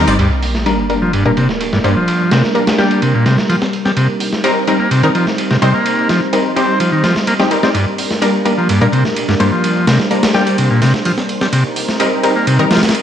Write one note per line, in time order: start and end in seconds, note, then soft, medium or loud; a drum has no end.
0.00 0.15 G3 medium
0.00 0.15 C4 medium
0.00 0.15 D#4 medium
0.00 0.17 C5 medium
0.07 0.17 G1 medium
0.07 0.17 G3 medium
0.07 0.17 C4 medium
0.07 0.14 C4 medium
0.07 0.17 D#4 medium
0.07 0.17 D5 medium
0.07 ride medium
0.19 0.30 G2 medium
0.19 7.71 G3 medium
0.19 3.93 A#3 medium
0.19 3.93 D4 medium
0.19 5.82 A#4 medium
0.19 ride medium
0.19 sub drop medium
0.42 open hi-hat medium
0.55 snare soft
0.66 0.79 G3 medium
0.66 0.79 A#3 medium
0.66 0.79 D4 medium
0.66 0.79 A#4 loud
0.66 ride medium
0.90 0.98 G3 medium
0.90 0.98 A#3 medium
0.90 0.98 D4 medium
0.90 0.98 A#4 medium
0.90 ride medium
1.02 1.12 F3 medium
1.13 1.24 G2 medium
1.13 ride medium
1.25 1.32 A#2 medium
1.25 1.33 G3 medium
1.25 1.33 A#3 medium
1.25 1.33 D4 medium
1.25 1.33 A#4 medium
1.25 ride soft
1.37 1.48 C3 medium
1.37 ride medium
1.49 snare soft
1.61 ride medium
1.73 1.79 G2 medium
1.73 snare soft
1.84 1.95 G2 medium
1.84 1.92 G3 medium
1.84 1.92 A#3 medium
1.84 1.92 D4 medium
1.84 1.92 C5 loud
1.84 ride medium
1.97 2.30 F3 medium
2.08 ride medium
2.31 2.42 C3 medium
2.31 snare medium
2.31 ride medium
2.44 snare soft
2.55 2.68 G3 medium
2.55 2.68 A#3 medium
2.55 2.68 D4 medium
2.55 2.68 A#4 medium
2.55 ride medium
2.67 snare loud
2.67 ride medium
2.78 2.92 G3 medium
2.78 3.01 G3 medium
2.78 2.92 A#3 medium
2.78 2.92 D4 medium
2.78 2.92 G4 medium
2.78 snare soft
2.91 ride medium
3.02 3.13 C3 medium
3.02 ride medium
3.15 3.25 A#2 medium
3.26 3.37 C3 loud
3.26 snare soft
3.26 ride medium
3.38 snare soft
3.49 3.56 F3 medium
3.49 ride medium
3.62 snare soft
3.73 ride medium
3.85 3.91 G3 medium
3.85 snare soft
3.97 4.08 C3 medium
3.97 7.71 C4 medium
3.97 7.71 D#4 medium
3.97 ride medium
4.20 open hi-hat medium
4.33 snare soft
4.44 4.57 G3 medium
4.44 4.57 C4 medium
4.44 4.57 D#4 medium
4.44 4.57 A#4 loud
4.44 ride medium
4.67 4.76 G3 medium
4.67 4.76 C4 medium
4.67 4.76 D#4 medium
4.67 4.76 A#4 medium
4.67 ride medium
4.80 4.90 A#3 medium
4.91 5.02 C3 medium
4.91 ride medium
5.03 5.10 D#3 loud
5.03 5.11 G3 medium
5.03 5.11 C4 medium
5.03 5.11 D#4 medium
5.03 5.11 A#4 loud
5.03 ride soft
5.15 5.26 F3 medium
5.15 ride medium
5.27 snare soft
5.38 ride medium
5.51 5.57 C3 medium
5.51 snare soft
5.62 5.73 C3 medium
5.62 5.70 G3 medium
5.62 5.70 C4 medium
5.62 5.70 D#4 medium
5.62 5.70 C5 loud
5.62 ride medium
5.74 6.08 A#3 medium
5.86 7.73 C5 medium
5.86 ride medium
6.09 6.20 F3 medium
6.09 snare soft
6.09 ride medium
6.33 6.46 G3 medium
6.33 6.46 C4 medium
6.33 6.46 D#4 medium
6.33 6.46 A#4 medium
6.33 ride medium
6.56 6.70 G3 medium
6.56 6.79 C4 medium
6.56 6.70 C4 medium
6.56 6.70 D#4 medium
6.56 6.70 G4 medium
6.56 ride medium
6.80 6.91 F3 medium
6.80 ride medium
6.92 7.03 D#3 medium
7.04 7.15 F3 medium
7.04 snare soft
7.04 ride medium
7.16 snare soft
7.27 7.34 A#3 loud
7.27 ride medium
7.39 7.48 G3 loud
7.39 7.48 C4 medium
7.39 7.48 D#4 medium
7.39 7.48 G4 loud
7.39 snare soft
7.51 7.59 G3 medium
7.51 7.59 C4 medium
7.51 7.59 D#4 medium
7.51 7.59 A#4 medium
7.51 ride medium
7.63 7.73 G3 medium
7.63 7.73 C4 medium
7.63 7.69 C4 medium
7.63 7.73 D#4 medium
7.63 7.73 D5 medium
7.63 snare soft
7.74 7.85 G2 medium
7.74 13.02 G3 medium
7.74 11.49 A#3 medium
7.74 11.49 D4 medium
7.74 9.62 A#4 medium
7.74 ride medium
7.98 open hi-hat medium
8.11 snare soft
8.22 8.35 G3 medium
8.22 8.35 A#3 medium
8.22 8.35 D4 medium
8.22 8.35 A#4 loud
8.22 ride medium
8.45 8.54 G3 medium
8.45 8.54 A#3 medium
8.45 8.54 D4 medium
8.45 8.54 A#4 medium
8.45 ride medium
8.58 8.68 F3 medium
8.69 8.80 G2 medium
8.69 ride medium
8.81 8.87 A#2 medium
8.81 8.89 G3 medium
8.81 8.89 A#3 medium
8.81 8.89 D4 medium
8.81 8.89 A#4 medium
8.81 ride soft
8.92 9.04 C3 medium
8.92 ride medium
9.05 snare soft
9.16 ride medium
9.28 9.35 G2 medium
9.28 snare soft
9.40 9.51 G2 medium
9.40 9.48 G3 medium
9.40 9.48 A#3 medium
9.40 9.48 D4 medium
9.40 9.48 C5 loud
9.40 ride medium
9.52 9.86 F3 medium
9.64 11.51 C5 medium
9.64 ride medium
9.87 9.98 C3 medium
9.87 snare loud
9.87 ride medium
10.00 snare soft
10.11 10.24 G3 medium
10.11 10.24 A#3 medium
10.11 10.24 D4 medium
10.11 10.24 A#4 medium
10.11 ride medium
10.23 snare loud
10.23 ride medium
10.34 10.48 G3 medium
10.34 10.57 G3 medium
10.34 10.48 A#3 medium
10.34 10.48 D4 medium
10.34 10.48 G4 medium
10.34 snare soft
10.47 ride medium
10.58 10.69 C3 medium
10.58 ride medium
10.71 10.81 A#2 medium
10.82 10.93 C3 loud
10.82 snare soft
10.82 ride medium
10.94 snare soft
11.05 11.12 F3 medium
11.05 ride medium
11.18 snare soft
11.29 ride medium
11.41 11.47 G3 medium
11.41 snare medium
11.53 11.64 C3 medium
11.53 13.02 C4 medium
11.53 13.02 D#4 medium
11.53 13.02 A#4 medium
11.53 ride medium
11.76 open hi-hat medium
11.88 snare soft
12.00 12.13 G3 medium
12.00 12.13 C4 medium
12.00 12.13 D#4 medium
12.00 12.13 A#4 loud
12.00 ride medium
12.23 12.32 G3 medium
12.23 12.32 C4 medium
12.23 12.32 D#4 medium
12.23 12.32 A#4 medium
12.23 ride medium
12.36 12.46 A#3 medium
12.47 12.58 C3 medium
12.47 ride medium
12.59 12.65 D#3 loud
12.59 12.67 G3 medium
12.59 12.67 C4 medium
12.59 12.67 D#4 medium
12.59 12.67 A#4 loud
12.59 ride soft
12.71 12.82 F3 loud
12.71 snare medium
12.71 ride medium
12.77 snare medium
12.77 ride medium
12.83 snare medium
12.83 ride medium
12.89 snare medium
12.89 ride medium
12.95 ride medium